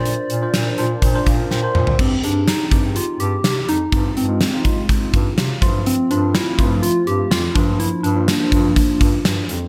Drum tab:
CC |----------------|x---------------|----------------|----------------|
HH |x-x-x-x-x-x-----|--x-x-x-x-x-x-x-|x-x-x-x-x-x-x-x-|x-x-x-x-x-x-x-x-|
TB |----------------|----------------|----------------|----x-------x---|
SD |----o-------o---|----o-------o---|----o-------o---|----o-------o---|
T2 |--------------o-|----------------|----------------|----------------|
FT |---------------o|----------------|----------------|----------------|
BD |--------o-o-----|o-----o---------|o-----o-o-o---o-|------o-------o-|

CC |----------------|
HH |x-x-x-x-x-x-x-x-|
TB |----x-------x---|
SD |----o-------o---|
T2 |----------------|
FT |----------------|
BD |------o-o-o-----|